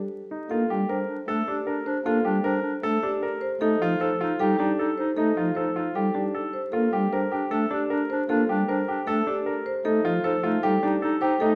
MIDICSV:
0, 0, Header, 1, 5, 480
1, 0, Start_track
1, 0, Key_signature, -2, "major"
1, 0, Tempo, 389610
1, 621, Time_signature, 4, 2, 24, 8
1, 14231, End_track
2, 0, Start_track
2, 0, Title_t, "Marimba"
2, 0, Program_c, 0, 12
2, 0, Note_on_c, 0, 67, 49
2, 213, Note_off_c, 0, 67, 0
2, 610, Note_on_c, 0, 69, 69
2, 929, Note_off_c, 0, 69, 0
2, 1103, Note_on_c, 0, 72, 59
2, 1413, Note_off_c, 0, 72, 0
2, 1584, Note_on_c, 0, 69, 59
2, 1818, Note_on_c, 0, 67, 57
2, 1894, Note_off_c, 0, 69, 0
2, 2131, Note_off_c, 0, 67, 0
2, 2295, Note_on_c, 0, 72, 65
2, 2537, Note_on_c, 0, 69, 85
2, 2610, Note_off_c, 0, 72, 0
2, 2851, Note_off_c, 0, 69, 0
2, 3007, Note_on_c, 0, 72, 70
2, 3328, Note_off_c, 0, 72, 0
2, 3490, Note_on_c, 0, 69, 76
2, 3730, Note_on_c, 0, 67, 75
2, 3809, Note_off_c, 0, 69, 0
2, 4049, Note_off_c, 0, 67, 0
2, 4204, Note_on_c, 0, 72, 70
2, 4448, Note_on_c, 0, 69, 93
2, 4527, Note_off_c, 0, 72, 0
2, 4768, Note_off_c, 0, 69, 0
2, 4929, Note_on_c, 0, 72, 70
2, 5248, Note_off_c, 0, 72, 0
2, 5413, Note_on_c, 0, 69, 76
2, 5651, Note_on_c, 0, 67, 66
2, 5730, Note_off_c, 0, 69, 0
2, 5969, Note_off_c, 0, 67, 0
2, 6131, Note_on_c, 0, 72, 62
2, 6363, Note_on_c, 0, 69, 74
2, 6449, Note_off_c, 0, 72, 0
2, 6686, Note_off_c, 0, 69, 0
2, 6838, Note_on_c, 0, 72, 59
2, 7165, Note_off_c, 0, 72, 0
2, 7336, Note_on_c, 0, 69, 59
2, 7567, Note_on_c, 0, 67, 59
2, 7651, Note_off_c, 0, 69, 0
2, 7888, Note_off_c, 0, 67, 0
2, 8049, Note_on_c, 0, 72, 56
2, 8279, Note_on_c, 0, 69, 81
2, 8368, Note_off_c, 0, 72, 0
2, 8605, Note_off_c, 0, 69, 0
2, 8780, Note_on_c, 0, 72, 66
2, 9092, Note_off_c, 0, 72, 0
2, 9255, Note_on_c, 0, 69, 67
2, 9498, Note_on_c, 0, 67, 63
2, 9571, Note_off_c, 0, 69, 0
2, 9812, Note_off_c, 0, 67, 0
2, 9978, Note_on_c, 0, 72, 68
2, 10215, Note_on_c, 0, 69, 82
2, 10291, Note_off_c, 0, 72, 0
2, 10530, Note_off_c, 0, 69, 0
2, 10707, Note_on_c, 0, 72, 64
2, 11015, Note_off_c, 0, 72, 0
2, 11173, Note_on_c, 0, 69, 74
2, 11430, Note_on_c, 0, 67, 66
2, 11490, Note_off_c, 0, 69, 0
2, 11736, Note_off_c, 0, 67, 0
2, 11900, Note_on_c, 0, 72, 70
2, 12133, Note_on_c, 0, 69, 89
2, 12212, Note_off_c, 0, 72, 0
2, 12450, Note_off_c, 0, 69, 0
2, 12617, Note_on_c, 0, 72, 72
2, 12931, Note_off_c, 0, 72, 0
2, 13099, Note_on_c, 0, 69, 72
2, 13345, Note_on_c, 0, 67, 66
2, 13412, Note_off_c, 0, 69, 0
2, 13654, Note_off_c, 0, 67, 0
2, 13810, Note_on_c, 0, 72, 72
2, 14047, Note_on_c, 0, 69, 90
2, 14129, Note_off_c, 0, 72, 0
2, 14231, Note_off_c, 0, 69, 0
2, 14231, End_track
3, 0, Start_track
3, 0, Title_t, "Grand piano"
3, 0, Program_c, 1, 0
3, 384, Note_on_c, 1, 63, 45
3, 624, Note_on_c, 1, 65, 60
3, 694, Note_off_c, 1, 63, 0
3, 865, Note_on_c, 1, 67, 70
3, 934, Note_off_c, 1, 65, 0
3, 1097, Note_on_c, 1, 70, 56
3, 1174, Note_off_c, 1, 67, 0
3, 1411, Note_off_c, 1, 70, 0
3, 1576, Note_on_c, 1, 69, 75
3, 1823, Note_on_c, 1, 62, 58
3, 1891, Note_off_c, 1, 69, 0
3, 2053, Note_on_c, 1, 70, 61
3, 2133, Note_off_c, 1, 62, 0
3, 2370, Note_off_c, 1, 70, 0
3, 2536, Note_on_c, 1, 65, 67
3, 2768, Note_on_c, 1, 67, 74
3, 2851, Note_off_c, 1, 65, 0
3, 3007, Note_on_c, 1, 70, 70
3, 3088, Note_off_c, 1, 67, 0
3, 3328, Note_off_c, 1, 70, 0
3, 3491, Note_on_c, 1, 69, 86
3, 3735, Note_on_c, 1, 62, 65
3, 3809, Note_off_c, 1, 69, 0
3, 3973, Note_on_c, 1, 70, 67
3, 4051, Note_off_c, 1, 62, 0
3, 4290, Note_off_c, 1, 70, 0
3, 4455, Note_on_c, 1, 63, 70
3, 4703, Note_on_c, 1, 65, 85
3, 4770, Note_off_c, 1, 63, 0
3, 4939, Note_on_c, 1, 69, 70
3, 5013, Note_off_c, 1, 65, 0
3, 5182, Note_on_c, 1, 65, 75
3, 5252, Note_off_c, 1, 69, 0
3, 5422, Note_on_c, 1, 67, 87
3, 5493, Note_off_c, 1, 65, 0
3, 5660, Note_on_c, 1, 62, 68
3, 5733, Note_off_c, 1, 67, 0
3, 5904, Note_on_c, 1, 69, 63
3, 5972, Note_off_c, 1, 62, 0
3, 6214, Note_off_c, 1, 69, 0
3, 6374, Note_on_c, 1, 63, 62
3, 6617, Note_on_c, 1, 65, 67
3, 6690, Note_off_c, 1, 63, 0
3, 6855, Note_on_c, 1, 69, 59
3, 6931, Note_off_c, 1, 65, 0
3, 7095, Note_on_c, 1, 65, 63
3, 7170, Note_off_c, 1, 69, 0
3, 7335, Note_on_c, 1, 67, 75
3, 7410, Note_off_c, 1, 65, 0
3, 7572, Note_on_c, 1, 62, 58
3, 7650, Note_off_c, 1, 67, 0
3, 7817, Note_on_c, 1, 69, 60
3, 7889, Note_off_c, 1, 62, 0
3, 8131, Note_off_c, 1, 69, 0
3, 8292, Note_on_c, 1, 65, 64
3, 8534, Note_on_c, 1, 67, 77
3, 8610, Note_off_c, 1, 65, 0
3, 8781, Note_on_c, 1, 70, 65
3, 8850, Note_off_c, 1, 67, 0
3, 9013, Note_on_c, 1, 67, 69
3, 9093, Note_off_c, 1, 70, 0
3, 9252, Note_on_c, 1, 69, 78
3, 9330, Note_off_c, 1, 67, 0
3, 9494, Note_on_c, 1, 62, 66
3, 9570, Note_off_c, 1, 69, 0
3, 9734, Note_on_c, 1, 70, 66
3, 9810, Note_off_c, 1, 62, 0
3, 10050, Note_off_c, 1, 70, 0
3, 10219, Note_on_c, 1, 65, 66
3, 10461, Note_on_c, 1, 67, 73
3, 10532, Note_off_c, 1, 65, 0
3, 10698, Note_on_c, 1, 70, 65
3, 10773, Note_off_c, 1, 67, 0
3, 10943, Note_on_c, 1, 67, 68
3, 11012, Note_off_c, 1, 70, 0
3, 11179, Note_on_c, 1, 69, 81
3, 11253, Note_off_c, 1, 67, 0
3, 11420, Note_on_c, 1, 62, 62
3, 11492, Note_off_c, 1, 69, 0
3, 11656, Note_on_c, 1, 70, 62
3, 11732, Note_off_c, 1, 62, 0
3, 11971, Note_off_c, 1, 70, 0
3, 12137, Note_on_c, 1, 63, 67
3, 12378, Note_on_c, 1, 65, 81
3, 12451, Note_off_c, 1, 63, 0
3, 12618, Note_on_c, 1, 69, 72
3, 12692, Note_off_c, 1, 65, 0
3, 12855, Note_on_c, 1, 65, 75
3, 12931, Note_off_c, 1, 69, 0
3, 13098, Note_on_c, 1, 67, 86
3, 13170, Note_off_c, 1, 65, 0
3, 13341, Note_on_c, 1, 62, 65
3, 13411, Note_off_c, 1, 67, 0
3, 13579, Note_on_c, 1, 69, 69
3, 13653, Note_off_c, 1, 62, 0
3, 13817, Note_on_c, 1, 67, 84
3, 13892, Note_off_c, 1, 69, 0
3, 14061, Note_on_c, 1, 63, 72
3, 14131, Note_off_c, 1, 67, 0
3, 14231, Note_off_c, 1, 63, 0
3, 14231, End_track
4, 0, Start_track
4, 0, Title_t, "Clarinet"
4, 0, Program_c, 2, 71
4, 612, Note_on_c, 2, 62, 33
4, 783, Note_off_c, 2, 62, 0
4, 853, Note_on_c, 2, 62, 44
4, 1023, Note_off_c, 2, 62, 0
4, 1086, Note_on_c, 2, 62, 50
4, 1259, Note_off_c, 2, 62, 0
4, 1323, Note_on_c, 2, 62, 55
4, 1497, Note_off_c, 2, 62, 0
4, 1567, Note_on_c, 2, 62, 64
4, 1740, Note_off_c, 2, 62, 0
4, 1815, Note_on_c, 2, 62, 67
4, 1985, Note_off_c, 2, 62, 0
4, 2054, Note_on_c, 2, 62, 68
4, 2224, Note_off_c, 2, 62, 0
4, 2285, Note_on_c, 2, 62, 80
4, 2459, Note_off_c, 2, 62, 0
4, 2520, Note_on_c, 2, 62, 72
4, 2695, Note_off_c, 2, 62, 0
4, 2767, Note_on_c, 2, 62, 73
4, 2940, Note_off_c, 2, 62, 0
4, 3002, Note_on_c, 2, 62, 73
4, 3176, Note_off_c, 2, 62, 0
4, 3235, Note_on_c, 2, 62, 63
4, 3412, Note_off_c, 2, 62, 0
4, 3490, Note_on_c, 2, 62, 55
4, 3662, Note_off_c, 2, 62, 0
4, 3729, Note_on_c, 2, 62, 50
4, 3901, Note_off_c, 2, 62, 0
4, 3980, Note_on_c, 2, 62, 42
4, 4148, Note_off_c, 2, 62, 0
4, 4472, Note_on_c, 2, 63, 40
4, 4636, Note_off_c, 2, 63, 0
4, 4707, Note_on_c, 2, 63, 51
4, 4873, Note_off_c, 2, 63, 0
4, 4944, Note_on_c, 2, 63, 62
4, 5111, Note_off_c, 2, 63, 0
4, 5182, Note_on_c, 2, 63, 67
4, 5350, Note_off_c, 2, 63, 0
4, 5422, Note_on_c, 2, 63, 72
4, 5589, Note_off_c, 2, 63, 0
4, 5651, Note_on_c, 2, 63, 75
4, 5822, Note_off_c, 2, 63, 0
4, 5889, Note_on_c, 2, 63, 76
4, 6061, Note_off_c, 2, 63, 0
4, 6141, Note_on_c, 2, 63, 71
4, 6309, Note_off_c, 2, 63, 0
4, 6383, Note_on_c, 2, 63, 70
4, 6550, Note_off_c, 2, 63, 0
4, 6624, Note_on_c, 2, 63, 63
4, 6791, Note_off_c, 2, 63, 0
4, 6871, Note_on_c, 2, 63, 68
4, 7035, Note_off_c, 2, 63, 0
4, 7098, Note_on_c, 2, 63, 55
4, 7267, Note_off_c, 2, 63, 0
4, 7342, Note_on_c, 2, 63, 50
4, 7509, Note_off_c, 2, 63, 0
4, 7590, Note_on_c, 2, 63, 41
4, 7755, Note_off_c, 2, 63, 0
4, 7820, Note_on_c, 2, 63, 32
4, 7988, Note_off_c, 2, 63, 0
4, 8298, Note_on_c, 2, 62, 35
4, 8467, Note_off_c, 2, 62, 0
4, 8546, Note_on_c, 2, 62, 42
4, 8712, Note_off_c, 2, 62, 0
4, 8775, Note_on_c, 2, 62, 54
4, 8945, Note_off_c, 2, 62, 0
4, 9019, Note_on_c, 2, 62, 61
4, 9187, Note_off_c, 2, 62, 0
4, 9253, Note_on_c, 2, 62, 64
4, 9424, Note_off_c, 2, 62, 0
4, 9501, Note_on_c, 2, 62, 73
4, 9669, Note_off_c, 2, 62, 0
4, 9735, Note_on_c, 2, 62, 71
4, 9905, Note_off_c, 2, 62, 0
4, 9986, Note_on_c, 2, 62, 81
4, 10152, Note_off_c, 2, 62, 0
4, 10223, Note_on_c, 2, 62, 77
4, 10390, Note_off_c, 2, 62, 0
4, 10468, Note_on_c, 2, 62, 77
4, 10634, Note_off_c, 2, 62, 0
4, 10706, Note_on_c, 2, 62, 67
4, 10872, Note_off_c, 2, 62, 0
4, 10950, Note_on_c, 2, 62, 62
4, 11115, Note_off_c, 2, 62, 0
4, 11189, Note_on_c, 2, 62, 57
4, 11354, Note_off_c, 2, 62, 0
4, 11422, Note_on_c, 2, 62, 47
4, 11590, Note_off_c, 2, 62, 0
4, 11667, Note_on_c, 2, 62, 37
4, 11833, Note_off_c, 2, 62, 0
4, 12156, Note_on_c, 2, 63, 37
4, 12319, Note_off_c, 2, 63, 0
4, 12380, Note_on_c, 2, 63, 45
4, 12548, Note_off_c, 2, 63, 0
4, 12616, Note_on_c, 2, 63, 59
4, 12786, Note_off_c, 2, 63, 0
4, 12861, Note_on_c, 2, 63, 65
4, 13029, Note_off_c, 2, 63, 0
4, 13095, Note_on_c, 2, 63, 72
4, 13265, Note_off_c, 2, 63, 0
4, 13341, Note_on_c, 2, 63, 79
4, 13509, Note_off_c, 2, 63, 0
4, 13589, Note_on_c, 2, 63, 79
4, 13754, Note_off_c, 2, 63, 0
4, 13827, Note_on_c, 2, 63, 81
4, 13992, Note_off_c, 2, 63, 0
4, 14065, Note_on_c, 2, 63, 76
4, 14231, Note_off_c, 2, 63, 0
4, 14231, End_track
5, 0, Start_track
5, 0, Title_t, "Pipe organ"
5, 0, Program_c, 3, 19
5, 614, Note_on_c, 3, 58, 74
5, 797, Note_off_c, 3, 58, 0
5, 864, Note_on_c, 3, 55, 53
5, 1042, Note_off_c, 3, 55, 0
5, 1574, Note_on_c, 3, 57, 59
5, 1756, Note_off_c, 3, 57, 0
5, 2528, Note_on_c, 3, 58, 82
5, 2713, Note_off_c, 3, 58, 0
5, 2771, Note_on_c, 3, 55, 64
5, 2954, Note_off_c, 3, 55, 0
5, 3494, Note_on_c, 3, 57, 71
5, 3676, Note_off_c, 3, 57, 0
5, 4450, Note_on_c, 3, 57, 97
5, 4634, Note_off_c, 3, 57, 0
5, 4690, Note_on_c, 3, 53, 70
5, 4874, Note_off_c, 3, 53, 0
5, 5414, Note_on_c, 3, 55, 71
5, 5596, Note_off_c, 3, 55, 0
5, 6381, Note_on_c, 3, 57, 79
5, 6561, Note_off_c, 3, 57, 0
5, 6622, Note_on_c, 3, 53, 60
5, 6801, Note_off_c, 3, 53, 0
5, 7333, Note_on_c, 3, 55, 60
5, 7516, Note_off_c, 3, 55, 0
5, 8296, Note_on_c, 3, 58, 80
5, 8477, Note_off_c, 3, 58, 0
5, 8533, Note_on_c, 3, 55, 62
5, 8716, Note_off_c, 3, 55, 0
5, 9251, Note_on_c, 3, 57, 61
5, 9435, Note_off_c, 3, 57, 0
5, 10213, Note_on_c, 3, 58, 83
5, 10396, Note_off_c, 3, 58, 0
5, 10456, Note_on_c, 3, 55, 65
5, 10637, Note_off_c, 3, 55, 0
5, 11178, Note_on_c, 3, 57, 71
5, 11359, Note_off_c, 3, 57, 0
5, 12139, Note_on_c, 3, 57, 89
5, 12320, Note_off_c, 3, 57, 0
5, 12377, Note_on_c, 3, 53, 65
5, 12558, Note_off_c, 3, 53, 0
5, 12856, Note_on_c, 3, 57, 79
5, 13038, Note_off_c, 3, 57, 0
5, 13097, Note_on_c, 3, 55, 68
5, 13278, Note_off_c, 3, 55, 0
5, 14055, Note_on_c, 3, 57, 89
5, 14231, Note_off_c, 3, 57, 0
5, 14231, End_track
0, 0, End_of_file